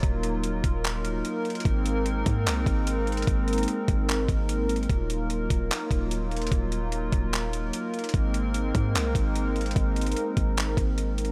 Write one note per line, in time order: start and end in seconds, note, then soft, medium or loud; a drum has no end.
0.00 0.61 D#1 loud
0.00 1.62 F#3 medium
0.00 1.62 A#3 medium
0.00 8.10 D#4 medium
0.00 1.62 F4 medium
0.00 8.10 A#4 medium
0.00 kick loud
0.00 closed hi-hat medium
0.23 closed hi-hat medium
0.43 closed hi-hat medium
0.64 1.22 D#1 loud
0.64 kick loud
0.64 closed hi-hat medium
0.84 clap loud
0.84 closed hi-hat medium
1.05 closed hi-hat medium
1.25 closed hi-hat medium
1.45 closed hi-hat soft
1.50 closed hi-hat soft
1.55 closed hi-hat medium
1.60 closed hi-hat medium
1.65 2.24 G#1 loud
1.65 4.86 G#3 medium
1.65 11.32 A#3 medium
1.65 4.86 C4 medium
1.65 kick loud
1.65 closed hi-hat medium
1.86 closed hi-hat medium
2.06 closed hi-hat medium
2.26 2.48 G#2 loud
2.26 kick loud
2.26 closed hi-hat medium
2.46 2.66 C2 loud
2.46 clap loud
2.46 closed hi-hat medium
2.66 3.25 G#1 loud
2.66 kick loud
2.66 closed hi-hat medium
2.87 closed hi-hat medium
3.07 closed hi-hat soft
3.12 closed hi-hat soft
3.17 closed hi-hat medium
3.22 closed hi-hat medium
3.27 3.66 G#1 loud
3.27 kick loud
3.27 closed hi-hat medium
3.48 closed hi-hat medium
3.53 closed hi-hat medium
3.58 closed hi-hat medium
3.63 closed hi-hat medium
3.68 closed hi-hat medium
3.88 4.27 G#1 loud
3.88 kick loud
3.88 closed hi-hat medium
4.09 clap loud
4.09 closed hi-hat medium
4.28 4.87 G#1 loud
4.28 kick medium
4.28 closed hi-hat medium
4.49 closed hi-hat medium
4.69 closed hi-hat medium
4.76 closed hi-hat soft
4.83 closed hi-hat soft
4.89 5.48 D#1 loud
4.89 8.11 F#3 medium
4.89 8.11 F4 medium
4.89 kick loud
4.89 closed hi-hat medium
5.10 closed hi-hat medium
5.30 closed hi-hat medium
5.50 5.70 D#1 loud
5.50 kick loud
5.50 closed hi-hat medium
5.71 clap loud
5.71 closed hi-hat medium
5.91 6.49 D#1 loud
5.91 kick medium
5.91 closed hi-hat medium
6.11 closed hi-hat medium
6.31 closed hi-hat soft
6.37 closed hi-hat soft
6.42 closed hi-hat medium
6.47 closed hi-hat medium
6.52 7.10 D#1 loud
6.52 kick loud
6.52 closed hi-hat medium
6.72 closed hi-hat medium
6.92 closed hi-hat medium
7.12 7.71 D#1 loud
7.12 kick loud
7.12 closed hi-hat medium
7.33 clap loud
7.33 closed hi-hat medium
7.53 closed hi-hat medium
7.73 closed hi-hat medium
7.94 closed hi-hat soft
7.99 closed hi-hat soft
8.04 closed hi-hat medium
8.09 closed hi-hat medium
8.14 8.72 G#1 loud
8.14 11.32 G#3 medium
8.14 11.32 C4 medium
8.14 11.32 D#4 medium
8.14 11.32 A#4 medium
8.14 kick loud
8.14 closed hi-hat medium
8.34 closed hi-hat medium
8.54 closed hi-hat medium
8.75 8.97 G#2 loud
8.75 kick loud
8.75 closed hi-hat medium
8.95 9.14 C2 loud
8.95 clap loud
8.95 closed hi-hat medium
9.15 9.73 G#1 loud
9.15 kick medium
9.15 closed hi-hat medium
9.36 closed hi-hat medium
9.56 closed hi-hat soft
9.61 closed hi-hat soft
9.66 closed hi-hat medium
9.71 closed hi-hat medium
9.76 10.15 G#1 loud
9.76 kick loud
9.76 closed hi-hat medium
9.96 closed hi-hat medium
10.01 closed hi-hat medium
10.06 closed hi-hat medium
10.12 closed hi-hat medium
10.17 closed hi-hat medium
10.37 10.76 G#1 loud
10.37 kick loud
10.37 closed hi-hat medium
10.57 clap loud
10.57 closed hi-hat medium
10.77 11.32 G#1 loud
10.77 kick medium
10.77 closed hi-hat medium
10.98 closed hi-hat medium
11.18 closed hi-hat medium
11.25 closed hi-hat soft